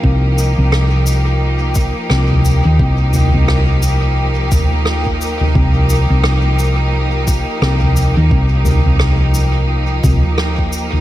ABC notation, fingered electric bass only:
X:1
M:4/4
L:1/16
Q:"Swing 16ths" 1/4=87
K:Cm
V:1 name="Fingered electric bass" clef=bass
C,,3 C,,8 z C,,3 E,, | C,,3 C,,8 z4 z | C,,3 C,,8 z C,,3 E,, | C,,3 C,,6- C,, C,, z4 z |]